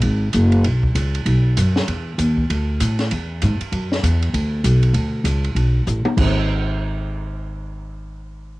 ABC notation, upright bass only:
X:1
M:4/4
L:1/8
Q:"Swing" 1/4=195
K:Blyd
V:1 name="Upright bass" clef=bass
G,,,2 F,,,2 B,,,2 C,,2 | B,,,2 F,,2 =E,,2 D,,2 | =D,,2 =A,,2 =E,,2 G,, z | F,,2 =E,,2 =D,,2 B,,,2 |
=D,,2 C,,2 B,,,2 =A,,, z | G,,,8- | G,,,8 |]